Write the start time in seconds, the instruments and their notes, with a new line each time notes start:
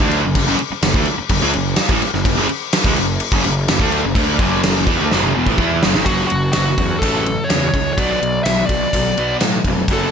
0.00 picked electric bass D2, overdriven electric guitar D3 A3 D4, kick
0.11 crash
0.23 picked electric bass F#1, overdriven electric guitar F#2 C#3
0.35 picked electric bass F#1, overdriven electric guitar F#2 C#3, kick, crash
0.47 picked electric bass F#1, overdriven electric guitar F#2 C#3
0.58 muted picked electric bass stroke, muted overdriven electric guitar stroke, crash
0.70 muted picked electric bass stroke, muted overdriven electric guitar stroke
0.82 picked electric bass F#1, overdriven electric guitar F#2 C#3, snare, crash
0.94 picked electric bass D2, overdriven electric guitar D3 A3, kick
1.05 muted overdriven electric guitar stroke, muted picked electric bass stroke, crash
1.18 muted overdriven electric guitar stroke, muted picked electric bass stroke
1.29 picked electric bass F#1, overdriven electric guitar F#2 C#3, kick, crash
1.42 picked electric bass C#2, overdriven electric guitar C#3 G#3
1.53 picked electric bass F#1, overdriven electric guitar F#2 C#3, crash
1.76 snare, crash
1.89 picked electric bass A1, overdriven electric guitar A2 E3, kick
2.02 muted overdriven electric guitar stroke, muted picked electric bass stroke, crash
2.14 picked electric bass F#1, overdriven electric guitar F#2 C#3, snare
2.25 picked electric bass F#1, overdriven electric guitar F#2 C#3, kick, crash
2.37 picked electric bass F#1, overdriven electric guitar F#2 C#3
2.49 muted overdriven electric guitar stroke, muted picked electric bass stroke, crash
2.73 snare, crash
2.84 picked electric bass C#2, overdriven electric guitar C#3 G#3, kick
2.96 picked electric bass F#1, overdriven electric guitar F#2 C#3, crash
3.20 crash
3.32 picked electric bass F#1, overdriven electric guitar F#2 C#3, kick
3.44 picked electric bass F#1, overdriven electric guitar F#2 C#3, crash
3.68 picked electric bass F#1, overdriven electric guitar F#2 C#3, snare, crash
3.80 picked electric bass D2, overdriven electric guitar D3 A3 D4, kick
3.92 crash
4.04 picked electric bass F#1, overdriven electric guitar F#2 C#3
4.15 picked electric bass D2, overdriven electric guitar D3 A3 D4, kick, crash
4.39 picked electric bass F#1, overdriven electric guitar F#2 C#3 F#3, kick, crash
4.63 snare, crash
4.87 picked electric bass E2, overdriven electric guitar E3 B3, kick, crash
4.99 picked electric bass D2, overdriven electric guitar D3 A3
5.11 picked electric bass F#1, overdriven electric guitar F#2 C#3 F#3, snare
5.24 high tom
5.35 picked electric bass E1, overdriven electric guitar E2 B2
5.46 picked electric bass A1, overdriven electric guitar A2 E3, kick
5.58 picked electric bass E2, overdriven electric guitar E3 B3 E4, kick
5.83 picked electric bass F#1, overdriven electric guitar F#2 C#3, snare
5.94 picked electric bass G#1, overdriven electric guitar G#2 D#3, snare
6.06 picked electric bass F#1, overdriven electric guitar F#2 C#3 F#3, lead electric guitar F#4, kick, ride
6.27 lead electric guitar F#4, ride
6.32 picked electric bass F#1, overdriven electric guitar F#2 C#3
6.53 picked electric bass F#1, overdriven electric guitar F#2 C#3, lead electric guitar F#4, snare, ride
6.78 picked electric bass E2, overdriven electric guitar F#2 C#3, kick, ride
6.99 picked electric bass A1, overdriven electric guitar F#2, lead electric guitar A4, kick, ride
7.03 overdriven electric guitar C#3 F#3
7.26 overdriven electric guitar F#2 C#3, ride
7.44 lead electric guitar C#5
7.49 picked electric bass E2, overdriven electric guitar F#2 C#3, snare, ride
7.68 lead electric guitar C#5
7.74 picked electric bass C#2, overdriven electric guitar F#2 C#3, kick, ride
7.93 overdriven electric guitar B2, lead electric guitar D5
7.98 picked electric bass B1, overdriven electric guitar F#3 B3, kick, ride
8.21 picked electric bass B1, overdriven electric guitar B2 F#3, ride
8.44 picked electric bass B1, overdriven electric guitar B2 F#3, lead electric guitar E5, snare, ride
8.66 picked electric bass B1, lead electric guitar D5, kick, ride
8.70 overdriven electric guitar B2 F#3
8.93 picked electric bass B1, overdriven electric guitar B2 F#3, kick, ride
9.17 picked electric bass B1, overdriven electric guitar B2 F#3 B3, ride
9.40 picked electric bass A2, overdriven electric guitar B2 F#3, snare, ride
9.64 picked electric bass F1, overdriven electric guitar B2 F#3, kick, ride
9.88 picked electric bass F#1, overdriven electric guitar F#2 C#3 F#3, kick, ride
9.93 lead electric guitar A4